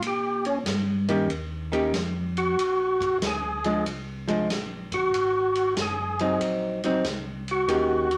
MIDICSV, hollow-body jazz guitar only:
0, 0, Header, 1, 2, 480
1, 0, Start_track
1, 0, Tempo, 639659
1, 13, Time_signature, 4, 2, 24, 8
1, 6135, End_track
2, 0, Start_track
2, 0, Title_t, "Hollow-body jazz guitar"
2, 0, Program_c, 0, 26
2, 814, Note_on_c, 0, 51, 72
2, 816, Note_on_c, 0, 58, 72
2, 823, Note_on_c, 0, 61, 81
2, 825, Note_on_c, 0, 67, 74
2, 958, Note_off_c, 0, 51, 0
2, 959, Note_off_c, 0, 58, 0
2, 963, Note_off_c, 0, 61, 0
2, 963, Note_off_c, 0, 67, 0
2, 1290, Note_on_c, 0, 51, 71
2, 1296, Note_on_c, 0, 58, 63
2, 1300, Note_on_c, 0, 61, 73
2, 1301, Note_on_c, 0, 67, 71
2, 1436, Note_off_c, 0, 51, 0
2, 1439, Note_off_c, 0, 58, 0
2, 1441, Note_off_c, 0, 61, 0
2, 1442, Note_off_c, 0, 67, 0
2, 2739, Note_on_c, 0, 53, 61
2, 2744, Note_on_c, 0, 56, 75
2, 2750, Note_on_c, 0, 62, 68
2, 2881, Note_off_c, 0, 53, 0
2, 2883, Note_off_c, 0, 56, 0
2, 2886, Note_off_c, 0, 62, 0
2, 3209, Note_on_c, 0, 53, 72
2, 3217, Note_on_c, 0, 56, 81
2, 3224, Note_on_c, 0, 62, 66
2, 3355, Note_off_c, 0, 53, 0
2, 3359, Note_off_c, 0, 56, 0
2, 3363, Note_off_c, 0, 62, 0
2, 4656, Note_on_c, 0, 54, 70
2, 4660, Note_on_c, 0, 60, 69
2, 4662, Note_on_c, 0, 63, 85
2, 5101, Note_off_c, 0, 54, 0
2, 5103, Note_off_c, 0, 60, 0
2, 5104, Note_off_c, 0, 63, 0
2, 5135, Note_on_c, 0, 54, 73
2, 5142, Note_on_c, 0, 60, 78
2, 5142, Note_on_c, 0, 63, 85
2, 5277, Note_off_c, 0, 54, 0
2, 5281, Note_off_c, 0, 60, 0
2, 5281, Note_off_c, 0, 63, 0
2, 5765, Note_on_c, 0, 51, 63
2, 5767, Note_on_c, 0, 58, 58
2, 5769, Note_on_c, 0, 61, 68
2, 5771, Note_on_c, 0, 67, 72
2, 6055, Note_off_c, 0, 51, 0
2, 6055, Note_off_c, 0, 58, 0
2, 6057, Note_off_c, 0, 61, 0
2, 6057, Note_off_c, 0, 67, 0
2, 6135, End_track
0, 0, End_of_file